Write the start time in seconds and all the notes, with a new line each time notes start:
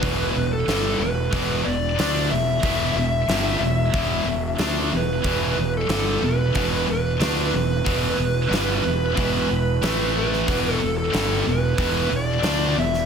Already playing: B4
0.02 E1 E2 B2 E3, kick, open hi-hat
0.35 E1 E2 B2
0.53 A4
0.68 G1 G2 D3 G3, snare, open hi-hat
0.99 E1 E2 B2 B4
1.32 E1 E2 B2 E3, kick, open hi-hat
1.64 E1 E2 B2 D5
1.98 D2 D3 A3 D4, snare, open hi-hat
2.30 E1 E2 B2 E5
2.62 E1 E2 B2 E3, kick, open hi-hat
2.95 E1 E2 B2
3.27 G1 G2 D3 G3, snare, open hi-hat
3.60 E1 E2 B2
3.94 E1 E2 B2 E3, kick, open hi-hat
4.25 E1 E2 B2
4.58 D2 D3 A3 D4, snare, open hi-hat
4.92 E1 E2 B2
4.97 B4
5.23 E1 E2 B2 E3, kick, open hi-hat
5.56 E1 E2 B2
5.77 A4
5.89 G1 G2 D3 G3, snare, open hi-hat
6.21 E1 E2 B2
6.26 B4
6.54 E1 E2 B2 E3, kick, open hi-hat
6.87 E1 E2 B2 B4
7.20 D2 D3 A3 D4, snare, open hi-hat
7.53 E1 E2 B2 B4
7.86 E1 E2 B2 E3, kick, open hi-hat
8.17 E1 E2 B2
8.50 G1 G2 D3 G3, snare, open hi-hat
8.85 E1 E2 B2
9.17 E1 E2 B2 E3, kick, open hi-hat
9.50 E1 E2 B2
9.82 A1 A2 E3 A3, snare, open hi-hat
10.18 B4
10.33 snare
10.48 E1 E2 B2 E3, kick, open hi-hat
10.73 A4
10.80 E1 E2 B2
10.98 A4
11.13 G1 G2 D3 G3, snare, open hi-hat
11.47 E1 E2 B2 B4
11.77 E1 E2 B2 E3, kick, open hi-hat
12.11 E1 E2 B2
12.16 D5
12.43 D2 D3 A3 D4, snare, open hi-hat
12.77 E1 E2 B2 E5
12.94 snare